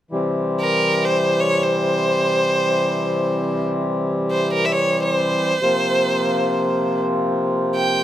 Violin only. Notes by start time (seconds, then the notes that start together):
0.60 A#4
1.05 C5
1.40 C#5
1.63 C5
4.31 C5
4.53 A#4
4.65 E5
4.72 C#5
5.03 C5
7.76 G5